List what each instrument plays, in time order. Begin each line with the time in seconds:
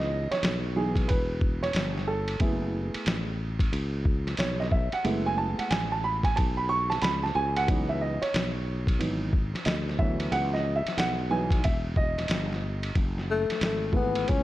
Already playing: fretless electric bass C#2, grand piano E3 F#3 B3 D#4 D#5
0.31 grand piano C#5, muted fretless electric bass stroke, snare, ride
0.43 fretless electric bass B1, snare, hi-hat pedal, ride
0.76 grand piano E3 F#3 B3 D#4 G#4
0.96 kick, ride
1.08 fretless electric bass E1, grand piano B4, kick, ride
1.41 kick
1.63 grand piano C#5, snare, ride
1.73 fretless electric bass G1, snare, hi-hat pedal, ride
1.98 snare
2.07 grand piano A4
2.28 ride
2.40 fretless electric bass F#1, grand piano A3 B3 E4 G#4, kick, ride
2.94 muted fretless electric bass stroke, ride
3.06 fretless electric bass A1, snare, hi-hat pedal, ride
3.59 kick, ride
3.73 fretless electric bass C#2, ride
4.05 kick
4.27 snare, ride
4.37 fretless electric bass B1, grand piano C#5, snare, hi-hat pedal, ride
4.60 grand piano D#5, snare
4.72 grand piano E5, kick
4.92 grand piano F#5, muted fretless electric bass stroke, ride
5.04 fretless electric bass F#1, grand piano G#3 A3 B3 E4, ride
5.26 grand piano G#5
5.38 grand piano A5
5.59 grand piano F#5, muted fretless electric bass stroke, ride
5.71 fretless electric bass A1, grand piano G#5, snare, hi-hat pedal, ride
5.92 grand piano A5
6.04 grand piano B5
6.23 grand piano G#5, kick, ride
6.36 fretless electric bass B1, grand piano A5, kick, ride
6.57 grand piano B5
6.69 grand piano C#6
6.90 grand piano A5, snare, ride
7.02 fretless electric bass C#2, grand piano B5, snare, hi-hat pedal, ride
7.23 grand piano A5, snare
7.35 fretless electric bass C#2, grand piano G#5
7.57 grand piano F#5, ride
7.68 grand piano E3 F#3 B3 D#4, kick, ride
7.89 grand piano E5
8.01 grand piano D#5
8.22 grand piano C#5, muted fretless electric bass stroke, ride
8.34 fretless electric bass B1, snare, hi-hat pedal, ride
8.87 kick, ride
8.99 fretless electric bass G#1, grand piano E3 F#3 B3 D#4, ride
9.33 kick
9.54 muted fretless electric bass stroke, snare, ride
9.65 fretless electric bass D2, grand piano D#5, snare, hi-hat pedal, ride
9.89 snare
9.98 grand piano E3 F#3 B3 E4 E5, kick
10.20 ride
10.32 fretless electric bass C#2, grand piano F#5, ride
10.54 grand piano D#5, snare
10.76 grand piano E5
10.86 muted fretless electric bass stroke, snare, ride
10.97 fretless electric bass B1, grand piano F#5, snare, hi-hat pedal, ride
11.30 grand piano E3 F#3 B3 D#4 G#5
11.51 kick, ride
11.64 fretless electric bass E1, grand piano E5, kick, ride
11.96 grand piano D#5, kick
12.18 snare, ride
12.28 fretless electric bass G1, snare, hi-hat pedal, ride
12.53 snare
12.83 ride
12.95 fretless electric bass F#1, kick, ride
13.18 snare
13.31 tenor saxophone A3
13.50 muted fretless electric bass stroke, snare, ride
13.61 fretless electric bass G#1, tenor saxophone A3, snare, hi-hat pedal, ride
13.93 grand piano E3 A3 B3 G#4, tenor saxophone B3, kick
14.15 ride
14.28 fretless electric bass C#2, tenor saxophone C#4, kick, ride